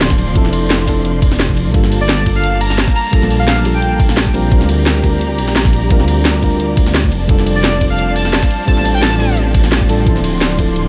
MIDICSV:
0, 0, Header, 1, 6, 480
1, 0, Start_track
1, 0, Tempo, 346821
1, 493, Time_signature, 4, 2, 24, 8
1, 15062, End_track
2, 0, Start_track
2, 0, Title_t, "Digital synth lead"
2, 0, Program_c, 0, 84
2, 2783, Note_on_c, 0, 74, 94
2, 3067, Note_off_c, 0, 74, 0
2, 3264, Note_on_c, 0, 77, 98
2, 3547, Note_off_c, 0, 77, 0
2, 3612, Note_on_c, 0, 82, 99
2, 3904, Note_off_c, 0, 82, 0
2, 4093, Note_on_c, 0, 82, 94
2, 4384, Note_off_c, 0, 82, 0
2, 4699, Note_on_c, 0, 77, 98
2, 4984, Note_off_c, 0, 77, 0
2, 5180, Note_on_c, 0, 79, 90
2, 5252, Note_off_c, 0, 79, 0
2, 5294, Note_on_c, 0, 79, 80
2, 5375, Note_off_c, 0, 79, 0
2, 10458, Note_on_c, 0, 74, 95
2, 10744, Note_off_c, 0, 74, 0
2, 10939, Note_on_c, 0, 77, 94
2, 11224, Note_off_c, 0, 77, 0
2, 11291, Note_on_c, 0, 81, 99
2, 11584, Note_off_c, 0, 81, 0
2, 12010, Note_on_c, 0, 81, 94
2, 12303, Note_off_c, 0, 81, 0
2, 12381, Note_on_c, 0, 79, 94
2, 12470, Note_off_c, 0, 79, 0
2, 12490, Note_on_c, 0, 81, 98
2, 12860, Note_off_c, 0, 81, 0
2, 15062, End_track
3, 0, Start_track
3, 0, Title_t, "String section"
3, 0, Program_c, 1, 48
3, 0, Note_on_c, 1, 53, 79
3, 0, Note_on_c, 1, 74, 75
3, 0, Note_on_c, 1, 84, 86
3, 2356, Note_off_c, 1, 74, 0
3, 2374, Note_off_c, 1, 84, 0
3, 2412, Note_on_c, 1, 58, 71
3, 2414, Note_on_c, 1, 81, 87
3, 5958, Note_off_c, 1, 53, 0
3, 5976, Note_off_c, 1, 58, 0
3, 5977, Note_off_c, 1, 81, 0
3, 6009, Note_on_c, 1, 67, 82
3, 6009, Note_on_c, 1, 82, 87
3, 6010, Note_on_c, 1, 74, 75
3, 9812, Note_off_c, 1, 67, 0
3, 9812, Note_off_c, 1, 82, 0
3, 9851, Note_on_c, 1, 53, 83
3, 9851, Note_on_c, 1, 81, 86
3, 13876, Note_off_c, 1, 74, 0
3, 13891, Note_off_c, 1, 81, 0
3, 13932, Note_on_c, 1, 74, 73
3, 13932, Note_on_c, 1, 84, 87
3, 15062, Note_off_c, 1, 53, 0
3, 15062, Note_off_c, 1, 74, 0
3, 15062, Note_off_c, 1, 84, 0
3, 15062, End_track
4, 0, Start_track
4, 0, Title_t, "FM electric piano"
4, 0, Program_c, 2, 5
4, 0, Control_c, 2, 64, 127
4, 0, Note_on_c, 2, 53, 78
4, 0, Note_on_c, 2, 60, 74
4, 0, Note_on_c, 2, 62, 72
4, 0, Note_on_c, 2, 64, 73
4, 0, Note_on_c, 2, 69, 86
4, 452, Note_off_c, 2, 53, 0
4, 462, Note_off_c, 2, 60, 0
4, 468, Note_off_c, 2, 62, 0
4, 469, Note_on_c, 2, 53, 101
4, 473, Note_off_c, 2, 64, 0
4, 479, Note_off_c, 2, 69, 0
4, 481, Note_on_c, 2, 60, 91
4, 491, Note_on_c, 2, 62, 89
4, 503, Note_on_c, 2, 64, 91
4, 514, Note_on_c, 2, 69, 110
4, 1174, Note_off_c, 2, 53, 0
4, 1180, Note_off_c, 2, 60, 0
4, 1185, Note_off_c, 2, 62, 0
4, 1189, Note_on_c, 2, 53, 89
4, 1191, Note_off_c, 2, 64, 0
4, 1196, Note_off_c, 2, 69, 0
4, 1200, Note_on_c, 2, 60, 83
4, 1212, Note_on_c, 2, 62, 84
4, 1224, Note_on_c, 2, 64, 82
4, 1235, Note_on_c, 2, 69, 103
4, 2138, Note_off_c, 2, 53, 0
4, 2144, Note_off_c, 2, 60, 0
4, 2150, Note_off_c, 2, 62, 0
4, 2156, Note_off_c, 2, 64, 0
4, 2161, Note_off_c, 2, 69, 0
4, 2389, Note_on_c, 2, 55, 96
4, 2401, Note_on_c, 2, 58, 86
4, 2414, Note_on_c, 2, 62, 91
4, 2425, Note_on_c, 2, 65, 89
4, 2432, Control_c, 2, 64, 0
4, 2436, Note_on_c, 2, 69, 103
4, 2708, Control_c, 2, 64, 127
4, 3094, Note_off_c, 2, 55, 0
4, 3100, Note_off_c, 2, 58, 0
4, 3107, Note_off_c, 2, 62, 0
4, 3111, Note_on_c, 2, 55, 76
4, 3112, Note_off_c, 2, 65, 0
4, 3117, Note_off_c, 2, 69, 0
4, 3122, Note_on_c, 2, 58, 73
4, 3134, Note_on_c, 2, 62, 71
4, 3145, Note_on_c, 2, 65, 71
4, 3156, Note_on_c, 2, 69, 87
4, 4290, Note_off_c, 2, 55, 0
4, 4301, Note_off_c, 2, 58, 0
4, 4306, Note_off_c, 2, 62, 0
4, 4306, Note_on_c, 2, 55, 100
4, 4312, Note_off_c, 2, 65, 0
4, 4318, Note_off_c, 2, 69, 0
4, 4318, Note_on_c, 2, 58, 91
4, 4329, Note_on_c, 2, 62, 91
4, 4342, Note_on_c, 2, 65, 88
4, 4354, Note_on_c, 2, 69, 110
4, 5013, Note_off_c, 2, 55, 0
4, 5019, Note_off_c, 2, 58, 0
4, 5024, Note_off_c, 2, 62, 0
4, 5030, Note_on_c, 2, 55, 92
4, 5031, Note_off_c, 2, 65, 0
4, 5036, Note_off_c, 2, 69, 0
4, 5043, Note_on_c, 2, 58, 84
4, 5054, Note_on_c, 2, 62, 82
4, 5065, Note_on_c, 2, 65, 84
4, 5077, Note_on_c, 2, 69, 98
4, 5979, Note_off_c, 2, 55, 0
4, 5985, Note_off_c, 2, 58, 0
4, 5991, Note_off_c, 2, 62, 0
4, 5996, Note_off_c, 2, 65, 0
4, 6000, Note_on_c, 2, 55, 90
4, 6003, Note_off_c, 2, 69, 0
4, 6007, Note_on_c, 2, 60, 82
4, 6013, Note_on_c, 2, 62, 85
4, 6018, Note_on_c, 2, 65, 82
4, 6023, Note_on_c, 2, 70, 101
4, 6029, Control_c, 2, 64, 0
4, 6213, Note_off_c, 2, 55, 0
4, 6223, Note_off_c, 2, 60, 0
4, 6226, Note_off_c, 2, 62, 0
4, 6228, Note_off_c, 2, 65, 0
4, 6230, Note_on_c, 2, 55, 96
4, 6231, Note_off_c, 2, 70, 0
4, 6242, Note_on_c, 2, 60, 90
4, 6253, Note_on_c, 2, 62, 91
4, 6265, Note_on_c, 2, 65, 89
4, 6276, Note_on_c, 2, 70, 107
4, 6284, Control_c, 2, 64, 127
4, 6931, Note_off_c, 2, 55, 0
4, 6941, Note_off_c, 2, 60, 0
4, 6946, Note_off_c, 2, 62, 0
4, 6948, Note_on_c, 2, 55, 81
4, 6952, Note_off_c, 2, 65, 0
4, 6958, Note_off_c, 2, 70, 0
4, 6960, Note_on_c, 2, 60, 73
4, 6970, Note_on_c, 2, 62, 71
4, 6981, Note_on_c, 2, 65, 74
4, 6994, Note_on_c, 2, 70, 86
4, 8130, Note_off_c, 2, 55, 0
4, 8139, Note_off_c, 2, 60, 0
4, 8144, Note_off_c, 2, 62, 0
4, 8147, Note_on_c, 2, 55, 98
4, 8150, Note_off_c, 2, 65, 0
4, 8157, Note_off_c, 2, 70, 0
4, 8159, Note_on_c, 2, 60, 91
4, 8171, Note_on_c, 2, 62, 91
4, 8183, Note_on_c, 2, 65, 92
4, 8195, Note_on_c, 2, 70, 108
4, 8853, Note_off_c, 2, 55, 0
4, 8859, Note_off_c, 2, 60, 0
4, 8865, Note_off_c, 2, 62, 0
4, 8867, Note_on_c, 2, 55, 90
4, 8871, Note_off_c, 2, 65, 0
4, 8877, Note_off_c, 2, 70, 0
4, 8878, Note_on_c, 2, 60, 82
4, 8890, Note_on_c, 2, 62, 81
4, 8901, Note_on_c, 2, 65, 84
4, 8912, Note_on_c, 2, 70, 100
4, 9818, Note_off_c, 2, 55, 0
4, 9823, Note_off_c, 2, 60, 0
4, 9829, Note_off_c, 2, 62, 0
4, 9834, Note_off_c, 2, 65, 0
4, 9840, Note_off_c, 2, 70, 0
4, 9868, Control_c, 2, 64, 0
4, 10067, Note_on_c, 2, 55, 99
4, 10079, Note_on_c, 2, 60, 87
4, 10090, Note_on_c, 2, 62, 90
4, 10101, Control_c, 2, 64, 127
4, 10102, Note_on_c, 2, 65, 86
4, 10113, Note_on_c, 2, 69, 109
4, 10770, Note_off_c, 2, 55, 0
4, 10779, Note_off_c, 2, 60, 0
4, 10785, Note_off_c, 2, 62, 0
4, 10786, Note_on_c, 2, 55, 78
4, 10790, Note_off_c, 2, 65, 0
4, 10796, Note_off_c, 2, 69, 0
4, 10799, Note_on_c, 2, 60, 71
4, 10810, Note_on_c, 2, 62, 70
4, 10822, Note_on_c, 2, 65, 72
4, 10834, Note_on_c, 2, 69, 85
4, 11973, Note_off_c, 2, 55, 0
4, 11979, Note_off_c, 2, 60, 0
4, 11985, Note_off_c, 2, 62, 0
4, 11988, Note_on_c, 2, 55, 98
4, 11991, Note_off_c, 2, 65, 0
4, 11996, Note_off_c, 2, 69, 0
4, 11999, Note_on_c, 2, 60, 91
4, 12010, Note_on_c, 2, 62, 93
4, 12022, Note_on_c, 2, 65, 92
4, 12034, Note_on_c, 2, 69, 108
4, 12693, Note_off_c, 2, 55, 0
4, 12699, Note_off_c, 2, 60, 0
4, 12705, Note_off_c, 2, 62, 0
4, 12707, Note_on_c, 2, 55, 92
4, 12710, Note_off_c, 2, 65, 0
4, 12716, Note_off_c, 2, 69, 0
4, 12718, Note_on_c, 2, 60, 83
4, 12729, Note_on_c, 2, 62, 82
4, 12742, Note_on_c, 2, 65, 84
4, 12754, Note_on_c, 2, 69, 101
4, 13658, Note_off_c, 2, 55, 0
4, 13663, Note_off_c, 2, 60, 0
4, 13669, Note_off_c, 2, 62, 0
4, 13675, Note_off_c, 2, 65, 0
4, 13676, Note_on_c, 2, 55, 93
4, 13681, Note_off_c, 2, 69, 0
4, 13683, Note_on_c, 2, 60, 83
4, 13687, Note_on_c, 2, 62, 86
4, 13693, Note_on_c, 2, 65, 85
4, 13700, Note_on_c, 2, 69, 103
4, 13897, Note_off_c, 2, 55, 0
4, 13901, Note_off_c, 2, 60, 0
4, 13903, Note_off_c, 2, 62, 0
4, 13906, Note_off_c, 2, 65, 0
4, 13909, Note_off_c, 2, 69, 0
4, 13911, Note_on_c, 2, 53, 96
4, 13922, Note_on_c, 2, 60, 89
4, 13933, Note_on_c, 2, 62, 89
4, 13944, Note_on_c, 2, 64, 88
4, 13953, Control_c, 2, 64, 0
4, 13956, Note_on_c, 2, 69, 104
4, 14167, Control_c, 2, 64, 127
4, 14611, Note_off_c, 2, 53, 0
4, 14621, Note_off_c, 2, 60, 0
4, 14626, Note_off_c, 2, 62, 0
4, 14627, Note_on_c, 2, 53, 78
4, 14632, Note_off_c, 2, 64, 0
4, 14638, Note_off_c, 2, 69, 0
4, 14638, Note_on_c, 2, 60, 72
4, 14650, Note_on_c, 2, 62, 71
4, 14661, Note_on_c, 2, 64, 73
4, 14673, Note_on_c, 2, 69, 87
4, 15062, Note_off_c, 2, 53, 0
4, 15062, Note_off_c, 2, 60, 0
4, 15062, Note_off_c, 2, 62, 0
4, 15062, Note_off_c, 2, 64, 0
4, 15062, Note_off_c, 2, 69, 0
4, 15062, End_track
5, 0, Start_track
5, 0, Title_t, "Detuned saw bass"
5, 0, Program_c, 3, 39
5, 14, Note_on_c, 3, 26, 94
5, 623, Note_on_c, 3, 29, 98
5, 644, Note_off_c, 3, 26, 0
5, 2302, Note_on_c, 3, 36, 86
5, 2323, Note_off_c, 3, 29, 0
5, 2402, Note_off_c, 3, 36, 0
5, 2411, Note_on_c, 3, 31, 99
5, 3960, Note_off_c, 3, 31, 0
5, 4461, Note_on_c, 3, 34, 95
5, 5995, Note_off_c, 3, 34, 0
5, 6012, Note_on_c, 3, 34, 98
5, 6380, Note_on_c, 3, 38, 100
5, 6401, Note_off_c, 3, 34, 0
5, 7451, Note_on_c, 3, 34, 86
5, 7472, Note_off_c, 3, 38, 0
5, 7669, Note_off_c, 3, 34, 0
5, 7691, Note_on_c, 3, 34, 97
5, 8300, Note_on_c, 3, 38, 97
5, 8321, Note_off_c, 3, 34, 0
5, 9851, Note_on_c, 3, 29, 99
5, 9872, Note_off_c, 3, 38, 0
5, 10070, Note_off_c, 3, 29, 0
5, 10091, Note_on_c, 3, 29, 98
5, 11640, Note_off_c, 3, 29, 0
5, 12142, Note_on_c, 3, 33, 95
5, 14062, Note_on_c, 3, 26, 95
5, 14082, Note_off_c, 3, 33, 0
5, 15062, Note_off_c, 3, 26, 0
5, 15062, End_track
6, 0, Start_track
6, 0, Title_t, "Drums"
6, 12, Note_on_c, 9, 38, 119
6, 12, Note_on_c, 9, 42, 98
6, 141, Note_on_c, 9, 36, 106
6, 141, Note_on_c, 9, 40, 49
6, 150, Note_off_c, 9, 38, 0
6, 150, Note_off_c, 9, 42, 0
6, 252, Note_on_c, 9, 42, 68
6, 252, Note_on_c, 9, 51, 79
6, 279, Note_off_c, 9, 36, 0
6, 279, Note_off_c, 9, 40, 0
6, 391, Note_off_c, 9, 42, 0
6, 391, Note_off_c, 9, 51, 0
6, 491, Note_on_c, 9, 42, 99
6, 492, Note_on_c, 9, 36, 116
6, 621, Note_on_c, 9, 40, 38
6, 630, Note_off_c, 9, 36, 0
6, 630, Note_off_c, 9, 42, 0
6, 732, Note_on_c, 9, 42, 71
6, 732, Note_on_c, 9, 51, 78
6, 759, Note_off_c, 9, 40, 0
6, 870, Note_off_c, 9, 42, 0
6, 870, Note_off_c, 9, 51, 0
6, 972, Note_on_c, 9, 38, 119
6, 972, Note_on_c, 9, 42, 102
6, 1111, Note_off_c, 9, 38, 0
6, 1111, Note_off_c, 9, 42, 0
6, 1212, Note_on_c, 9, 36, 59
6, 1212, Note_on_c, 9, 40, 35
6, 1212, Note_on_c, 9, 42, 73
6, 1212, Note_on_c, 9, 51, 77
6, 1350, Note_off_c, 9, 36, 0
6, 1351, Note_off_c, 9, 40, 0
6, 1351, Note_off_c, 9, 42, 0
6, 1351, Note_off_c, 9, 51, 0
6, 1452, Note_on_c, 9, 42, 98
6, 1590, Note_off_c, 9, 42, 0
6, 1691, Note_on_c, 9, 42, 70
6, 1691, Note_on_c, 9, 51, 74
6, 1692, Note_on_c, 9, 36, 109
6, 1821, Note_on_c, 9, 40, 51
6, 1830, Note_off_c, 9, 36, 0
6, 1830, Note_off_c, 9, 42, 0
6, 1830, Note_off_c, 9, 51, 0
6, 1932, Note_on_c, 9, 38, 114
6, 1932, Note_on_c, 9, 42, 101
6, 1960, Note_off_c, 9, 40, 0
6, 2060, Note_on_c, 9, 36, 61
6, 2070, Note_off_c, 9, 38, 0
6, 2070, Note_off_c, 9, 42, 0
6, 2172, Note_on_c, 9, 42, 70
6, 2172, Note_on_c, 9, 51, 78
6, 2199, Note_off_c, 9, 36, 0
6, 2310, Note_off_c, 9, 42, 0
6, 2310, Note_off_c, 9, 51, 0
6, 2411, Note_on_c, 9, 36, 124
6, 2411, Note_on_c, 9, 42, 100
6, 2541, Note_on_c, 9, 40, 38
6, 2549, Note_off_c, 9, 42, 0
6, 2550, Note_off_c, 9, 36, 0
6, 2653, Note_on_c, 9, 42, 71
6, 2653, Note_on_c, 9, 51, 75
6, 2679, Note_off_c, 9, 40, 0
6, 2791, Note_off_c, 9, 42, 0
6, 2791, Note_off_c, 9, 51, 0
6, 2892, Note_on_c, 9, 38, 126
6, 2892, Note_on_c, 9, 42, 102
6, 3030, Note_off_c, 9, 38, 0
6, 3030, Note_off_c, 9, 42, 0
6, 3131, Note_on_c, 9, 36, 62
6, 3132, Note_on_c, 9, 42, 73
6, 3132, Note_on_c, 9, 51, 77
6, 3269, Note_off_c, 9, 36, 0
6, 3270, Note_off_c, 9, 42, 0
6, 3270, Note_off_c, 9, 51, 0
6, 3371, Note_on_c, 9, 42, 94
6, 3509, Note_off_c, 9, 42, 0
6, 3612, Note_on_c, 9, 42, 71
6, 3612, Note_on_c, 9, 51, 74
6, 3741, Note_on_c, 9, 40, 51
6, 3750, Note_off_c, 9, 42, 0
6, 3750, Note_off_c, 9, 51, 0
6, 3851, Note_on_c, 9, 38, 121
6, 3851, Note_on_c, 9, 42, 99
6, 3879, Note_off_c, 9, 40, 0
6, 3980, Note_on_c, 9, 36, 108
6, 3981, Note_on_c, 9, 40, 52
6, 3989, Note_off_c, 9, 38, 0
6, 3989, Note_off_c, 9, 42, 0
6, 4093, Note_on_c, 9, 42, 70
6, 4093, Note_on_c, 9, 51, 77
6, 4119, Note_off_c, 9, 36, 0
6, 4119, Note_off_c, 9, 40, 0
6, 4231, Note_off_c, 9, 42, 0
6, 4231, Note_off_c, 9, 51, 0
6, 4331, Note_on_c, 9, 36, 127
6, 4331, Note_on_c, 9, 42, 96
6, 4460, Note_on_c, 9, 40, 39
6, 4469, Note_off_c, 9, 36, 0
6, 4469, Note_off_c, 9, 42, 0
6, 4573, Note_on_c, 9, 42, 66
6, 4573, Note_on_c, 9, 51, 74
6, 4599, Note_off_c, 9, 40, 0
6, 4712, Note_off_c, 9, 42, 0
6, 4712, Note_off_c, 9, 51, 0
6, 4812, Note_on_c, 9, 38, 127
6, 4812, Note_on_c, 9, 42, 95
6, 4950, Note_off_c, 9, 38, 0
6, 4950, Note_off_c, 9, 42, 0
6, 5052, Note_on_c, 9, 42, 70
6, 5052, Note_on_c, 9, 51, 72
6, 5190, Note_off_c, 9, 42, 0
6, 5190, Note_off_c, 9, 51, 0
6, 5291, Note_on_c, 9, 42, 92
6, 5429, Note_off_c, 9, 42, 0
6, 5531, Note_on_c, 9, 36, 116
6, 5531, Note_on_c, 9, 42, 66
6, 5531, Note_on_c, 9, 51, 72
6, 5661, Note_on_c, 9, 40, 52
6, 5669, Note_off_c, 9, 36, 0
6, 5669, Note_off_c, 9, 42, 0
6, 5669, Note_off_c, 9, 51, 0
6, 5771, Note_on_c, 9, 38, 127
6, 5771, Note_on_c, 9, 42, 96
6, 5799, Note_off_c, 9, 40, 0
6, 5900, Note_on_c, 9, 36, 64
6, 5910, Note_off_c, 9, 38, 0
6, 5910, Note_off_c, 9, 42, 0
6, 6011, Note_on_c, 9, 42, 68
6, 6011, Note_on_c, 9, 51, 74
6, 6038, Note_off_c, 9, 36, 0
6, 6149, Note_off_c, 9, 42, 0
6, 6149, Note_off_c, 9, 51, 0
6, 6250, Note_on_c, 9, 42, 93
6, 6251, Note_on_c, 9, 36, 127
6, 6380, Note_on_c, 9, 40, 38
6, 6389, Note_off_c, 9, 42, 0
6, 6390, Note_off_c, 9, 36, 0
6, 6489, Note_on_c, 9, 42, 67
6, 6489, Note_on_c, 9, 51, 72
6, 6518, Note_off_c, 9, 40, 0
6, 6628, Note_off_c, 9, 42, 0
6, 6628, Note_off_c, 9, 51, 0
6, 6729, Note_on_c, 9, 38, 127
6, 6729, Note_on_c, 9, 42, 94
6, 6868, Note_off_c, 9, 38, 0
6, 6868, Note_off_c, 9, 42, 0
6, 6971, Note_on_c, 9, 36, 66
6, 6971, Note_on_c, 9, 42, 69
6, 6971, Note_on_c, 9, 51, 74
6, 7109, Note_off_c, 9, 42, 0
6, 7109, Note_off_c, 9, 51, 0
6, 7110, Note_off_c, 9, 36, 0
6, 7211, Note_on_c, 9, 42, 92
6, 7350, Note_off_c, 9, 42, 0
6, 7451, Note_on_c, 9, 42, 65
6, 7451, Note_on_c, 9, 51, 70
6, 7580, Note_on_c, 9, 40, 52
6, 7589, Note_off_c, 9, 42, 0
6, 7589, Note_off_c, 9, 51, 0
6, 7691, Note_on_c, 9, 38, 127
6, 7691, Note_on_c, 9, 42, 92
6, 7719, Note_off_c, 9, 40, 0
6, 7820, Note_on_c, 9, 40, 51
6, 7821, Note_on_c, 9, 36, 113
6, 7829, Note_off_c, 9, 38, 0
6, 7829, Note_off_c, 9, 42, 0
6, 7931, Note_on_c, 9, 42, 65
6, 7931, Note_on_c, 9, 51, 72
6, 7959, Note_off_c, 9, 40, 0
6, 7960, Note_off_c, 9, 36, 0
6, 8069, Note_off_c, 9, 42, 0
6, 8069, Note_off_c, 9, 51, 0
6, 8171, Note_on_c, 9, 42, 93
6, 8173, Note_on_c, 9, 36, 124
6, 8301, Note_on_c, 9, 40, 37
6, 8310, Note_off_c, 9, 42, 0
6, 8311, Note_off_c, 9, 36, 0
6, 8413, Note_on_c, 9, 42, 63
6, 8413, Note_on_c, 9, 51, 70
6, 8439, Note_off_c, 9, 40, 0
6, 8551, Note_off_c, 9, 42, 0
6, 8551, Note_off_c, 9, 51, 0
6, 8652, Note_on_c, 9, 38, 127
6, 8652, Note_on_c, 9, 42, 93
6, 8790, Note_off_c, 9, 38, 0
6, 8790, Note_off_c, 9, 42, 0
6, 8892, Note_on_c, 9, 36, 64
6, 8892, Note_on_c, 9, 42, 67
6, 8892, Note_on_c, 9, 51, 75
6, 9030, Note_off_c, 9, 36, 0
6, 9031, Note_off_c, 9, 42, 0
6, 9031, Note_off_c, 9, 51, 0
6, 9132, Note_on_c, 9, 42, 87
6, 9270, Note_off_c, 9, 42, 0
6, 9371, Note_on_c, 9, 36, 113
6, 9372, Note_on_c, 9, 42, 64
6, 9372, Note_on_c, 9, 51, 71
6, 9500, Note_on_c, 9, 40, 49
6, 9510, Note_off_c, 9, 36, 0
6, 9511, Note_off_c, 9, 42, 0
6, 9511, Note_off_c, 9, 51, 0
6, 9612, Note_on_c, 9, 38, 127
6, 9612, Note_on_c, 9, 42, 93
6, 9639, Note_off_c, 9, 40, 0
6, 9740, Note_on_c, 9, 36, 68
6, 9751, Note_off_c, 9, 38, 0
6, 9751, Note_off_c, 9, 42, 0
6, 9852, Note_on_c, 9, 42, 64
6, 9852, Note_on_c, 9, 51, 72
6, 9879, Note_off_c, 9, 36, 0
6, 9990, Note_off_c, 9, 42, 0
6, 9990, Note_off_c, 9, 51, 0
6, 10091, Note_on_c, 9, 36, 122
6, 10091, Note_on_c, 9, 42, 92
6, 10221, Note_on_c, 9, 40, 35
6, 10230, Note_off_c, 9, 36, 0
6, 10230, Note_off_c, 9, 42, 0
6, 10332, Note_on_c, 9, 42, 66
6, 10332, Note_on_c, 9, 51, 73
6, 10359, Note_off_c, 9, 40, 0
6, 10471, Note_off_c, 9, 42, 0
6, 10471, Note_off_c, 9, 51, 0
6, 10572, Note_on_c, 9, 38, 125
6, 10572, Note_on_c, 9, 42, 91
6, 10710, Note_off_c, 9, 38, 0
6, 10710, Note_off_c, 9, 42, 0
6, 10811, Note_on_c, 9, 36, 63
6, 10811, Note_on_c, 9, 42, 65
6, 10811, Note_on_c, 9, 51, 77
6, 10949, Note_off_c, 9, 42, 0
6, 10949, Note_off_c, 9, 51, 0
6, 10950, Note_off_c, 9, 36, 0
6, 11050, Note_on_c, 9, 42, 89
6, 11189, Note_off_c, 9, 42, 0
6, 11291, Note_on_c, 9, 42, 65
6, 11291, Note_on_c, 9, 51, 76
6, 11421, Note_on_c, 9, 40, 49
6, 11429, Note_off_c, 9, 42, 0
6, 11429, Note_off_c, 9, 51, 0
6, 11531, Note_on_c, 9, 38, 123
6, 11531, Note_on_c, 9, 42, 91
6, 11559, Note_off_c, 9, 40, 0
6, 11660, Note_on_c, 9, 36, 109
6, 11661, Note_on_c, 9, 40, 49
6, 11669, Note_off_c, 9, 38, 0
6, 11669, Note_off_c, 9, 42, 0
6, 11771, Note_on_c, 9, 42, 65
6, 11771, Note_on_c, 9, 51, 76
6, 11798, Note_off_c, 9, 36, 0
6, 11799, Note_off_c, 9, 40, 0
6, 11910, Note_off_c, 9, 42, 0
6, 11910, Note_off_c, 9, 51, 0
6, 12011, Note_on_c, 9, 36, 115
6, 12012, Note_on_c, 9, 42, 93
6, 12140, Note_on_c, 9, 40, 35
6, 12149, Note_off_c, 9, 36, 0
6, 12150, Note_off_c, 9, 42, 0
6, 12252, Note_on_c, 9, 42, 65
6, 12252, Note_on_c, 9, 51, 80
6, 12278, Note_off_c, 9, 40, 0
6, 12390, Note_off_c, 9, 42, 0
6, 12390, Note_off_c, 9, 51, 0
6, 12490, Note_on_c, 9, 38, 122
6, 12490, Note_on_c, 9, 42, 94
6, 12629, Note_off_c, 9, 38, 0
6, 12629, Note_off_c, 9, 42, 0
6, 12731, Note_on_c, 9, 42, 68
6, 12731, Note_on_c, 9, 51, 79
6, 12870, Note_off_c, 9, 42, 0
6, 12870, Note_off_c, 9, 51, 0
6, 12969, Note_on_c, 9, 42, 89
6, 13108, Note_off_c, 9, 42, 0
6, 13209, Note_on_c, 9, 42, 68
6, 13209, Note_on_c, 9, 51, 78
6, 13211, Note_on_c, 9, 36, 108
6, 13339, Note_on_c, 9, 40, 48
6, 13348, Note_off_c, 9, 42, 0
6, 13348, Note_off_c, 9, 51, 0
6, 13350, Note_off_c, 9, 36, 0
6, 13450, Note_on_c, 9, 38, 122
6, 13450, Note_on_c, 9, 42, 95
6, 13477, Note_off_c, 9, 40, 0
6, 13580, Note_on_c, 9, 36, 62
6, 13589, Note_off_c, 9, 38, 0
6, 13589, Note_off_c, 9, 42, 0
6, 13691, Note_on_c, 9, 42, 66
6, 13691, Note_on_c, 9, 51, 76
6, 13719, Note_off_c, 9, 36, 0
6, 13829, Note_off_c, 9, 42, 0
6, 13829, Note_off_c, 9, 51, 0
6, 13931, Note_on_c, 9, 36, 113
6, 13932, Note_on_c, 9, 42, 101
6, 14060, Note_on_c, 9, 40, 35
6, 14070, Note_off_c, 9, 36, 0
6, 14071, Note_off_c, 9, 42, 0
6, 14171, Note_on_c, 9, 42, 70
6, 14171, Note_on_c, 9, 51, 81
6, 14198, Note_off_c, 9, 40, 0
6, 14310, Note_off_c, 9, 42, 0
6, 14310, Note_off_c, 9, 51, 0
6, 14412, Note_on_c, 9, 38, 120
6, 14412, Note_on_c, 9, 42, 98
6, 14550, Note_off_c, 9, 38, 0
6, 14550, Note_off_c, 9, 42, 0
6, 14651, Note_on_c, 9, 36, 59
6, 14652, Note_on_c, 9, 42, 70
6, 14652, Note_on_c, 9, 51, 80
6, 14790, Note_off_c, 9, 36, 0
6, 14791, Note_off_c, 9, 42, 0
6, 14791, Note_off_c, 9, 51, 0
6, 14893, Note_on_c, 9, 42, 97
6, 15031, Note_off_c, 9, 42, 0
6, 15062, End_track
0, 0, End_of_file